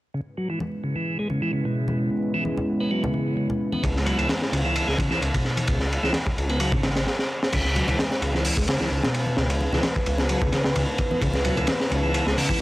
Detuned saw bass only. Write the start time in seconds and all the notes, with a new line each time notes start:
3.84 C#2
4.19 C#2
4.53 C#2
4.88 C#2
5.11 C#2
5.22 C#2
5.68 C#2
6.03 C#2
6.37 C#2
6.72 G#1
7.53 C#2
7.88 C#2
8.22 C#2
8.57 C#2
8.80 C#2
8.91 C#2
9.37 C#2
9.72 C#2
10.06 C#2
10.42 C#2
10.65 C#2
10.76 C#2
11.21 C#2
11.57 C#2
11.91 C#2
12.26 C#2
12.49 C#2